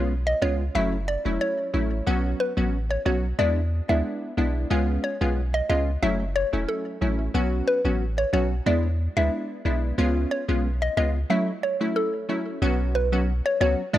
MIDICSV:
0, 0, Header, 1, 4, 480
1, 0, Start_track
1, 0, Key_signature, 2, "minor"
1, 0, Tempo, 659341
1, 1507, Time_signature, 4, 2, 24, 8
1, 10178, End_track
2, 0, Start_track
2, 0, Title_t, "Synth pluck"
2, 0, Program_c, 0, 84
2, 195, Note_on_c, 0, 75, 81
2, 280, Note_off_c, 0, 75, 0
2, 308, Note_on_c, 0, 73, 91
2, 404, Note_off_c, 0, 73, 0
2, 548, Note_on_c, 0, 76, 81
2, 645, Note_off_c, 0, 76, 0
2, 786, Note_on_c, 0, 74, 82
2, 884, Note_off_c, 0, 74, 0
2, 1027, Note_on_c, 0, 73, 76
2, 1372, Note_off_c, 0, 73, 0
2, 1748, Note_on_c, 0, 71, 77
2, 1844, Note_off_c, 0, 71, 0
2, 2115, Note_on_c, 0, 73, 78
2, 2201, Note_off_c, 0, 73, 0
2, 2227, Note_on_c, 0, 73, 88
2, 2324, Note_off_c, 0, 73, 0
2, 2466, Note_on_c, 0, 74, 83
2, 2564, Note_off_c, 0, 74, 0
2, 2834, Note_on_c, 0, 76, 76
2, 2920, Note_off_c, 0, 76, 0
2, 3667, Note_on_c, 0, 73, 74
2, 3764, Note_off_c, 0, 73, 0
2, 4034, Note_on_c, 0, 75, 82
2, 4120, Note_off_c, 0, 75, 0
2, 4146, Note_on_c, 0, 75, 90
2, 4244, Note_off_c, 0, 75, 0
2, 4387, Note_on_c, 0, 76, 83
2, 4484, Note_off_c, 0, 76, 0
2, 4627, Note_on_c, 0, 73, 86
2, 4724, Note_off_c, 0, 73, 0
2, 4867, Note_on_c, 0, 69, 76
2, 5212, Note_off_c, 0, 69, 0
2, 5588, Note_on_c, 0, 71, 79
2, 5685, Note_off_c, 0, 71, 0
2, 5955, Note_on_c, 0, 73, 83
2, 6041, Note_off_c, 0, 73, 0
2, 6068, Note_on_c, 0, 73, 88
2, 6165, Note_off_c, 0, 73, 0
2, 6308, Note_on_c, 0, 74, 80
2, 6405, Note_off_c, 0, 74, 0
2, 6674, Note_on_c, 0, 76, 80
2, 6760, Note_off_c, 0, 76, 0
2, 7507, Note_on_c, 0, 73, 76
2, 7604, Note_off_c, 0, 73, 0
2, 7876, Note_on_c, 0, 75, 85
2, 7962, Note_off_c, 0, 75, 0
2, 7988, Note_on_c, 0, 75, 87
2, 8085, Note_off_c, 0, 75, 0
2, 8228, Note_on_c, 0, 76, 83
2, 8325, Note_off_c, 0, 76, 0
2, 8469, Note_on_c, 0, 73, 81
2, 8565, Note_off_c, 0, 73, 0
2, 8707, Note_on_c, 0, 69, 78
2, 9052, Note_off_c, 0, 69, 0
2, 9428, Note_on_c, 0, 71, 78
2, 9525, Note_off_c, 0, 71, 0
2, 9796, Note_on_c, 0, 73, 83
2, 9882, Note_off_c, 0, 73, 0
2, 9908, Note_on_c, 0, 73, 86
2, 10005, Note_off_c, 0, 73, 0
2, 10148, Note_on_c, 0, 74, 85
2, 10178, Note_off_c, 0, 74, 0
2, 10178, End_track
3, 0, Start_track
3, 0, Title_t, "Synth stab"
3, 0, Program_c, 1, 62
3, 0, Note_on_c, 1, 56, 82
3, 0, Note_on_c, 1, 59, 75
3, 0, Note_on_c, 1, 61, 73
3, 0, Note_on_c, 1, 65, 86
3, 97, Note_off_c, 1, 56, 0
3, 97, Note_off_c, 1, 59, 0
3, 98, Note_off_c, 1, 61, 0
3, 98, Note_off_c, 1, 65, 0
3, 303, Note_on_c, 1, 56, 79
3, 304, Note_on_c, 1, 59, 73
3, 306, Note_on_c, 1, 61, 75
3, 307, Note_on_c, 1, 65, 85
3, 459, Note_off_c, 1, 56, 0
3, 460, Note_off_c, 1, 59, 0
3, 461, Note_off_c, 1, 61, 0
3, 461, Note_off_c, 1, 65, 0
3, 544, Note_on_c, 1, 54, 92
3, 545, Note_on_c, 1, 57, 85
3, 547, Note_on_c, 1, 61, 88
3, 548, Note_on_c, 1, 64, 104
3, 700, Note_off_c, 1, 54, 0
3, 701, Note_off_c, 1, 57, 0
3, 702, Note_off_c, 1, 61, 0
3, 702, Note_off_c, 1, 64, 0
3, 911, Note_on_c, 1, 54, 77
3, 913, Note_on_c, 1, 57, 67
3, 914, Note_on_c, 1, 61, 69
3, 916, Note_on_c, 1, 64, 80
3, 1238, Note_off_c, 1, 54, 0
3, 1239, Note_off_c, 1, 57, 0
3, 1240, Note_off_c, 1, 61, 0
3, 1241, Note_off_c, 1, 64, 0
3, 1263, Note_on_c, 1, 54, 77
3, 1264, Note_on_c, 1, 57, 67
3, 1265, Note_on_c, 1, 61, 67
3, 1267, Note_on_c, 1, 64, 80
3, 1487, Note_off_c, 1, 54, 0
3, 1487, Note_off_c, 1, 57, 0
3, 1488, Note_off_c, 1, 61, 0
3, 1489, Note_off_c, 1, 64, 0
3, 1503, Note_on_c, 1, 54, 92
3, 1506, Note_on_c, 1, 59, 84
3, 1507, Note_on_c, 1, 61, 89
3, 1508, Note_on_c, 1, 66, 106
3, 1842, Note_off_c, 1, 54, 0
3, 1843, Note_off_c, 1, 59, 0
3, 1844, Note_off_c, 1, 61, 0
3, 1844, Note_off_c, 1, 66, 0
3, 1870, Note_on_c, 1, 54, 83
3, 1871, Note_on_c, 1, 59, 73
3, 1872, Note_on_c, 1, 61, 75
3, 1875, Note_on_c, 1, 66, 85
3, 2016, Note_off_c, 1, 54, 0
3, 2016, Note_off_c, 1, 59, 0
3, 2017, Note_off_c, 1, 61, 0
3, 2018, Note_off_c, 1, 66, 0
3, 2223, Note_on_c, 1, 54, 81
3, 2225, Note_on_c, 1, 59, 72
3, 2226, Note_on_c, 1, 61, 71
3, 2227, Note_on_c, 1, 66, 85
3, 2379, Note_off_c, 1, 54, 0
3, 2380, Note_off_c, 1, 59, 0
3, 2381, Note_off_c, 1, 61, 0
3, 2382, Note_off_c, 1, 66, 0
3, 2465, Note_on_c, 1, 56, 97
3, 2466, Note_on_c, 1, 59, 82
3, 2467, Note_on_c, 1, 62, 83
3, 2469, Note_on_c, 1, 64, 103
3, 2620, Note_off_c, 1, 56, 0
3, 2621, Note_off_c, 1, 59, 0
3, 2621, Note_off_c, 1, 62, 0
3, 2623, Note_off_c, 1, 64, 0
3, 2831, Note_on_c, 1, 56, 71
3, 2832, Note_on_c, 1, 59, 71
3, 2833, Note_on_c, 1, 62, 67
3, 2836, Note_on_c, 1, 64, 81
3, 3158, Note_off_c, 1, 56, 0
3, 3158, Note_off_c, 1, 59, 0
3, 3159, Note_off_c, 1, 62, 0
3, 3161, Note_off_c, 1, 64, 0
3, 3183, Note_on_c, 1, 56, 73
3, 3185, Note_on_c, 1, 59, 69
3, 3186, Note_on_c, 1, 62, 72
3, 3188, Note_on_c, 1, 64, 87
3, 3407, Note_off_c, 1, 56, 0
3, 3408, Note_off_c, 1, 59, 0
3, 3408, Note_off_c, 1, 62, 0
3, 3410, Note_off_c, 1, 64, 0
3, 3424, Note_on_c, 1, 56, 95
3, 3426, Note_on_c, 1, 59, 87
3, 3427, Note_on_c, 1, 61, 87
3, 3429, Note_on_c, 1, 65, 103
3, 3762, Note_off_c, 1, 56, 0
3, 3763, Note_off_c, 1, 59, 0
3, 3764, Note_off_c, 1, 61, 0
3, 3764, Note_off_c, 1, 65, 0
3, 3792, Note_on_c, 1, 56, 85
3, 3794, Note_on_c, 1, 59, 74
3, 3794, Note_on_c, 1, 61, 75
3, 3797, Note_on_c, 1, 65, 94
3, 3937, Note_off_c, 1, 56, 0
3, 3938, Note_off_c, 1, 59, 0
3, 3938, Note_off_c, 1, 61, 0
3, 3939, Note_off_c, 1, 65, 0
3, 4145, Note_on_c, 1, 56, 76
3, 4146, Note_on_c, 1, 59, 73
3, 4148, Note_on_c, 1, 61, 74
3, 4149, Note_on_c, 1, 65, 88
3, 4300, Note_off_c, 1, 56, 0
3, 4301, Note_off_c, 1, 59, 0
3, 4302, Note_off_c, 1, 61, 0
3, 4302, Note_off_c, 1, 65, 0
3, 4386, Note_on_c, 1, 54, 94
3, 4388, Note_on_c, 1, 57, 85
3, 4389, Note_on_c, 1, 61, 85
3, 4391, Note_on_c, 1, 64, 104
3, 4541, Note_off_c, 1, 54, 0
3, 4542, Note_off_c, 1, 57, 0
3, 4542, Note_off_c, 1, 61, 0
3, 4543, Note_off_c, 1, 64, 0
3, 4752, Note_on_c, 1, 54, 74
3, 4753, Note_on_c, 1, 57, 68
3, 4755, Note_on_c, 1, 61, 72
3, 4756, Note_on_c, 1, 64, 84
3, 5078, Note_off_c, 1, 54, 0
3, 5079, Note_off_c, 1, 57, 0
3, 5080, Note_off_c, 1, 61, 0
3, 5081, Note_off_c, 1, 64, 0
3, 5104, Note_on_c, 1, 54, 73
3, 5106, Note_on_c, 1, 57, 69
3, 5108, Note_on_c, 1, 61, 71
3, 5109, Note_on_c, 1, 64, 86
3, 5327, Note_off_c, 1, 54, 0
3, 5328, Note_off_c, 1, 57, 0
3, 5329, Note_off_c, 1, 61, 0
3, 5330, Note_off_c, 1, 64, 0
3, 5345, Note_on_c, 1, 54, 97
3, 5346, Note_on_c, 1, 59, 84
3, 5347, Note_on_c, 1, 61, 85
3, 5349, Note_on_c, 1, 66, 108
3, 5683, Note_off_c, 1, 54, 0
3, 5683, Note_off_c, 1, 59, 0
3, 5684, Note_off_c, 1, 61, 0
3, 5685, Note_off_c, 1, 66, 0
3, 5711, Note_on_c, 1, 54, 85
3, 5713, Note_on_c, 1, 59, 73
3, 5715, Note_on_c, 1, 61, 76
3, 5716, Note_on_c, 1, 66, 88
3, 5856, Note_off_c, 1, 54, 0
3, 5857, Note_off_c, 1, 59, 0
3, 5858, Note_off_c, 1, 61, 0
3, 5859, Note_off_c, 1, 66, 0
3, 6063, Note_on_c, 1, 54, 80
3, 6064, Note_on_c, 1, 59, 72
3, 6066, Note_on_c, 1, 61, 70
3, 6067, Note_on_c, 1, 66, 85
3, 6219, Note_off_c, 1, 54, 0
3, 6220, Note_off_c, 1, 59, 0
3, 6221, Note_off_c, 1, 61, 0
3, 6222, Note_off_c, 1, 66, 0
3, 6305, Note_on_c, 1, 56, 90
3, 6306, Note_on_c, 1, 59, 85
3, 6308, Note_on_c, 1, 62, 88
3, 6309, Note_on_c, 1, 64, 100
3, 6460, Note_off_c, 1, 56, 0
3, 6461, Note_off_c, 1, 59, 0
3, 6462, Note_off_c, 1, 62, 0
3, 6463, Note_off_c, 1, 64, 0
3, 6673, Note_on_c, 1, 56, 74
3, 6674, Note_on_c, 1, 59, 69
3, 6675, Note_on_c, 1, 62, 70
3, 6677, Note_on_c, 1, 64, 78
3, 6999, Note_off_c, 1, 56, 0
3, 6999, Note_off_c, 1, 59, 0
3, 7000, Note_off_c, 1, 62, 0
3, 7001, Note_off_c, 1, 64, 0
3, 7025, Note_on_c, 1, 56, 74
3, 7026, Note_on_c, 1, 59, 71
3, 7028, Note_on_c, 1, 62, 69
3, 7030, Note_on_c, 1, 64, 85
3, 7248, Note_off_c, 1, 56, 0
3, 7248, Note_off_c, 1, 59, 0
3, 7249, Note_off_c, 1, 62, 0
3, 7250, Note_off_c, 1, 64, 0
3, 7265, Note_on_c, 1, 56, 91
3, 7266, Note_on_c, 1, 59, 85
3, 7268, Note_on_c, 1, 61, 89
3, 7269, Note_on_c, 1, 65, 110
3, 7602, Note_off_c, 1, 56, 0
3, 7603, Note_off_c, 1, 59, 0
3, 7604, Note_off_c, 1, 61, 0
3, 7605, Note_off_c, 1, 65, 0
3, 7632, Note_on_c, 1, 56, 83
3, 7634, Note_on_c, 1, 59, 74
3, 7635, Note_on_c, 1, 61, 78
3, 7636, Note_on_c, 1, 65, 88
3, 7777, Note_off_c, 1, 56, 0
3, 7778, Note_off_c, 1, 59, 0
3, 7778, Note_off_c, 1, 61, 0
3, 7779, Note_off_c, 1, 65, 0
3, 7986, Note_on_c, 1, 56, 78
3, 7988, Note_on_c, 1, 59, 73
3, 7988, Note_on_c, 1, 61, 68
3, 7990, Note_on_c, 1, 65, 83
3, 8141, Note_off_c, 1, 56, 0
3, 8142, Note_off_c, 1, 59, 0
3, 8142, Note_off_c, 1, 61, 0
3, 8143, Note_off_c, 1, 65, 0
3, 8224, Note_on_c, 1, 54, 95
3, 8226, Note_on_c, 1, 57, 85
3, 8228, Note_on_c, 1, 61, 82
3, 8230, Note_on_c, 1, 64, 101
3, 8380, Note_off_c, 1, 54, 0
3, 8381, Note_off_c, 1, 57, 0
3, 8382, Note_off_c, 1, 61, 0
3, 8383, Note_off_c, 1, 64, 0
3, 8594, Note_on_c, 1, 54, 77
3, 8595, Note_on_c, 1, 57, 68
3, 8597, Note_on_c, 1, 61, 68
3, 8598, Note_on_c, 1, 64, 85
3, 8920, Note_off_c, 1, 54, 0
3, 8920, Note_off_c, 1, 57, 0
3, 8921, Note_off_c, 1, 61, 0
3, 8922, Note_off_c, 1, 64, 0
3, 8945, Note_on_c, 1, 54, 78
3, 8947, Note_on_c, 1, 57, 68
3, 8949, Note_on_c, 1, 61, 71
3, 8950, Note_on_c, 1, 64, 84
3, 9168, Note_off_c, 1, 54, 0
3, 9169, Note_off_c, 1, 57, 0
3, 9170, Note_off_c, 1, 61, 0
3, 9170, Note_off_c, 1, 64, 0
3, 9186, Note_on_c, 1, 54, 95
3, 9186, Note_on_c, 1, 59, 93
3, 9188, Note_on_c, 1, 61, 87
3, 9190, Note_on_c, 1, 66, 106
3, 9523, Note_off_c, 1, 54, 0
3, 9523, Note_off_c, 1, 59, 0
3, 9524, Note_off_c, 1, 61, 0
3, 9525, Note_off_c, 1, 66, 0
3, 9553, Note_on_c, 1, 54, 86
3, 9555, Note_on_c, 1, 59, 74
3, 9556, Note_on_c, 1, 61, 77
3, 9557, Note_on_c, 1, 66, 92
3, 9697, Note_off_c, 1, 54, 0
3, 9698, Note_off_c, 1, 59, 0
3, 9699, Note_off_c, 1, 61, 0
3, 9699, Note_off_c, 1, 66, 0
3, 9905, Note_on_c, 1, 54, 82
3, 9905, Note_on_c, 1, 59, 76
3, 9907, Note_on_c, 1, 61, 76
3, 9908, Note_on_c, 1, 66, 87
3, 10060, Note_off_c, 1, 54, 0
3, 10061, Note_off_c, 1, 59, 0
3, 10061, Note_off_c, 1, 61, 0
3, 10062, Note_off_c, 1, 66, 0
3, 10143, Note_on_c, 1, 56, 92
3, 10145, Note_on_c, 1, 59, 86
3, 10147, Note_on_c, 1, 62, 88
3, 10148, Note_on_c, 1, 64, 103
3, 10178, Note_off_c, 1, 56, 0
3, 10178, Note_off_c, 1, 59, 0
3, 10178, Note_off_c, 1, 62, 0
3, 10178, Note_off_c, 1, 64, 0
3, 10178, End_track
4, 0, Start_track
4, 0, Title_t, "Sub bass"
4, 0, Program_c, 2, 38
4, 0, Note_on_c, 2, 35, 86
4, 248, Note_off_c, 2, 35, 0
4, 307, Note_on_c, 2, 37, 91
4, 507, Note_off_c, 2, 37, 0
4, 548, Note_on_c, 2, 30, 103
4, 854, Note_off_c, 2, 30, 0
4, 914, Note_on_c, 2, 28, 93
4, 1008, Note_off_c, 2, 28, 0
4, 1267, Note_on_c, 2, 33, 85
4, 1467, Note_off_c, 2, 33, 0
4, 1507, Note_on_c, 2, 35, 105
4, 1707, Note_off_c, 2, 35, 0
4, 1874, Note_on_c, 2, 33, 85
4, 2168, Note_off_c, 2, 33, 0
4, 2227, Note_on_c, 2, 35, 94
4, 2427, Note_off_c, 2, 35, 0
4, 2467, Note_on_c, 2, 40, 108
4, 2773, Note_off_c, 2, 40, 0
4, 2834, Note_on_c, 2, 38, 96
4, 2928, Note_off_c, 2, 38, 0
4, 3186, Note_on_c, 2, 35, 91
4, 3386, Note_off_c, 2, 35, 0
4, 3427, Note_on_c, 2, 37, 106
4, 3627, Note_off_c, 2, 37, 0
4, 3794, Note_on_c, 2, 35, 87
4, 4088, Note_off_c, 2, 35, 0
4, 4147, Note_on_c, 2, 37, 90
4, 4347, Note_off_c, 2, 37, 0
4, 4387, Note_on_c, 2, 30, 107
4, 4693, Note_off_c, 2, 30, 0
4, 4755, Note_on_c, 2, 28, 99
4, 4849, Note_off_c, 2, 28, 0
4, 5108, Note_on_c, 2, 33, 89
4, 5308, Note_off_c, 2, 33, 0
4, 5346, Note_on_c, 2, 35, 106
4, 5547, Note_off_c, 2, 35, 0
4, 5713, Note_on_c, 2, 33, 88
4, 6007, Note_off_c, 2, 33, 0
4, 6066, Note_on_c, 2, 35, 96
4, 6267, Note_off_c, 2, 35, 0
4, 6306, Note_on_c, 2, 40, 113
4, 6612, Note_off_c, 2, 40, 0
4, 6675, Note_on_c, 2, 38, 92
4, 6768, Note_off_c, 2, 38, 0
4, 7027, Note_on_c, 2, 35, 94
4, 7227, Note_off_c, 2, 35, 0
4, 7267, Note_on_c, 2, 37, 107
4, 7467, Note_off_c, 2, 37, 0
4, 7634, Note_on_c, 2, 35, 87
4, 7928, Note_off_c, 2, 35, 0
4, 7987, Note_on_c, 2, 37, 94
4, 8187, Note_off_c, 2, 37, 0
4, 9186, Note_on_c, 2, 35, 118
4, 9765, Note_off_c, 2, 35, 0
4, 9907, Note_on_c, 2, 37, 90
4, 10013, Note_off_c, 2, 37, 0
4, 10147, Note_on_c, 2, 40, 100
4, 10178, Note_off_c, 2, 40, 0
4, 10178, End_track
0, 0, End_of_file